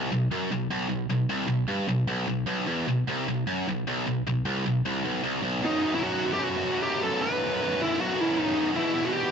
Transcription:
0.00 0.11 C2 loud
0.12 0.27 B1 medium
0.32 0.51 F#2 medium
0.52 0.67 B1 medium
0.71 0.88 B1 loud
0.89 1.05 B1 medium
1.10 1.26 B1 medium
1.29 1.47 C2 loud
1.48 1.64 B1 medium
1.68 1.88 G2 loud
1.88 2.04 B1 medium
2.08 2.26 B1 loud
2.27 2.44 B1 medium
2.47 2.67 B1 loud
2.68 2.87 E2 loud
2.88 3.04 B1 medium
3.08 3.27 C2 loud
3.28 3.43 B1 medium
3.47 3.66 F#2 loud
3.68 3.83 B1 medium
3.87 4.06 B1 loud
4.07 4.22 B1 medium
4.27 4.42 B1 medium
4.45 4.64 C2 loud
4.66 4.81 B1 medium
4.85 5.04 C2 loud
5.04 5.23 B1 loud
5.23 5.42 C2 loud
5.43 5.61 B1 loud
5.62 5.69 B1 medium
5.62 5.70 F#2 loud
5.62 5.94 D#4 medium
5.70 5.77 B1 medium
5.70 5.78 F#2 medium
5.77 5.85 B1 medium
5.77 5.86 F#2 medium
5.85 5.93 B1 medium
5.85 5.94 F#2 medium
5.93 6.01 B1 medium
5.93 6.02 F#2 loud
5.93 6.03 E4 medium
6.02 6.10 B1 medium
6.02 6.10 F#2 medium
6.02 6.32 F#4 medium
6.10 6.16 B1 medium
6.10 6.17 F#2 loud
6.17 6.24 B1 medium
6.17 6.25 F#2 medium
6.24 6.32 B1 medium
6.24 6.33 F#2 loud
6.33 6.40 B1 medium
6.33 6.40 F#2 medium
6.33 6.44 G4 medium
6.40 6.49 B1 medium
6.40 6.48 F#2 loud
6.40 6.82 F#4 loud
6.49 6.56 B1 medium
6.49 6.56 F#2 medium
6.56 6.64 B1 medium
6.56 6.64 F#2 loud
6.64 6.72 B1 medium
6.64 6.72 F#2 medium
6.72 6.80 B1 medium
6.72 6.80 F#2 medium
6.80 6.88 B1 medium
6.80 6.89 F#2 medium
6.80 7.02 G4 loud
6.88 6.94 B1 medium
6.88 6.95 F#2 medium
6.95 7.02 B1 medium
6.95 7.03 F#2 medium
7.03 7.11 B1 medium
7.03 7.11 F#2 medium
7.03 7.22 A4 loud
7.11 7.19 B1 medium
7.11 7.20 F#2 medium
7.21 7.28 B1 loud
7.21 7.29 F#2 medium
7.21 7.82 B4 loud
7.29 7.37 B1 medium
7.29 7.37 F#2 medium
7.38 7.43 B1 medium
7.38 7.44 F#2 medium
7.43 7.51 B1 medium
7.43 7.52 F#2 medium
7.51 7.59 B1 medium
7.51 7.61 F#2 medium
7.60 7.68 B1 medium
7.60 7.67 F#2 medium
7.68 7.76 B1 medium
7.68 7.76 F#2 medium
7.76 7.83 B1 medium
7.76 7.83 F#2 medium
7.82 7.91 B1 medium
7.82 7.92 F#2 medium
7.82 8.01 E4 medium
7.91 7.99 B1 medium
7.91 7.99 F#2 medium
8.00 8.07 B1 medium
8.00 8.07 F#2 loud
8.00 8.21 F#4 loud
8.08 8.15 B1 medium
8.08 8.15 F#2 medium
8.15 8.21 B1 medium
8.15 8.23 F#2 medium
8.21 8.29 B1 medium
8.21 8.31 F#2 medium
8.21 8.39 E4 medium
8.30 8.38 B1 medium
8.30 8.38 F#2 medium
8.39 8.46 B1 medium
8.39 8.46 F#2 medium
8.39 8.68 D#4 medium
8.46 8.54 B1 medium
8.46 8.55 F#2 medium
8.55 8.61 B1 medium
8.55 8.61 F#2 medium
8.61 8.69 B1 medium
8.61 8.69 F#2 medium
8.70 8.77 B1 medium
8.70 8.78 F#2 medium
8.76 8.85 E2 loud
8.76 8.86 B2 medium
8.76 9.07 E4 medium
8.85 8.93 E2 medium
8.85 8.94 B2 medium
8.93 9.01 E2 medium
8.93 9.01 B2 medium
9.02 9.08 E2 medium
9.02 9.09 B2 medium
9.02 9.13 F#4 loud
9.09 9.16 E2 medium
9.09 9.17 B2 medium
9.09 9.31 G4 medium
9.17 9.24 E2 medium
9.17 9.24 B2 medium
9.24 9.31 E2 medium
9.24 9.31 B2 medium

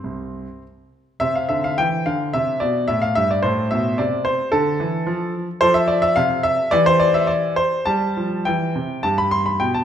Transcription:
0.00 0.45 C2 soft
0.00 0.62 C4 medium
1.20 1.49 C3 medium
1.20 3.40 C5 soft
1.20 1.35 E5 loud
1.35 1.50 F5 medium
1.49 1.77 D3 medium
1.49 1.64 E5 medium
1.64 1.78 F5 medium
1.78 2.05 E3 medium
1.78 2.06 G5 loud
2.06 2.33 D3 medium
2.06 2.34 F5 medium
2.33 2.61 C3 medium
2.33 2.61 E5 medium
2.60 2.88 B2 medium
2.60 2.89 D5 medium
2.88 3.15 A2 medium
2.88 3.02 E5 loud
3.02 3.16 F5 medium
3.15 3.43 G2 medium
3.15 3.30 E5 loud
3.31 3.44 D5 medium
3.43 3.70 A2 medium
3.43 3.71 C5 medium
3.71 3.97 B2 medium
3.71 3.98 E5 medium
3.98 4.38 C3 medium
3.98 4.26 D5 medium
4.25 4.52 C5 loud
4.52 4.78 D3 medium
4.52 5.34 A4 loud
4.80 5.06 E3 medium
5.07 5.46 F3 medium
5.61 6.01 F3 medium
5.61 6.68 A4 medium
5.61 5.75 C5 loud
5.74 5.88 E5 loud
5.88 6.02 D5 medium
6.02 6.16 E5 loud
6.16 6.57 C3 medium
6.16 6.44 F5 loud
6.43 6.72 E5 loud
6.71 7.55 E3 medium
6.71 7.83 G4 medium
6.71 6.86 D5 loud
6.86 7.00 C5 loud
7.00 7.14 D5 loud
7.14 7.29 E5 loud
7.27 7.57 D5 loud
7.56 7.86 C5 loud
7.85 8.15 G3 medium
7.85 8.99 G4 soft
7.85 8.45 A5 loud
8.17 8.45 F3 medium
8.45 8.74 E3 medium
8.45 9.03 G5 medium
8.75 9.02 C3 medium
9.03 9.45 G2 medium
9.03 9.84 G4 soft
9.03 9.18 A5 loud
9.18 9.32 B5 loud
9.31 9.46 C6 medium
9.46 9.60 B5 medium
9.60 9.84 B2 medium
9.60 9.75 G5 medium
9.74 9.84 A5 medium

